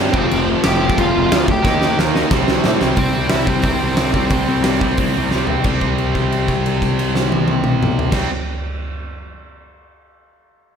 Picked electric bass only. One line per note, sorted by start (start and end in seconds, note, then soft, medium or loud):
0.14 0.25 F1 medium
0.32 0.55 F1 loud
0.65 0.88 F1 loud
0.99 1.10 F1 loud
1.16 1.27 F1 loud
1.33 1.44 D2 medium
1.48 1.60 D2 loud
1.65 1.88 D#2 loud
1.99 2.21 D#2 medium
2.31 2.43 C2 medium
2.48 2.59 C2 medium
2.66 2.77 A2 medium
2.82 2.93 C2 medium
2.97 3.12 C2 medium
3.17 3.30 C2 medium
3.33 3.47 C2 medium
3.47 3.62 C2 medium
3.64 3.79 C2 medium
3.82 3.96 C2 medium
3.98 4.12 C2 medium
4.14 4.29 C2 medium
4.31 4.46 C2 medium
4.48 4.63 C2 medium
4.65 4.80 C2 medium
4.82 4.96 C2 medium
4.98 5.13 C2 medium
5.17 5.31 C2 medium
5.34 5.47 C2 medium
5.51 5.64 C2 medium
5.65 8.04 C2 medium
8.13 8.27 C2 medium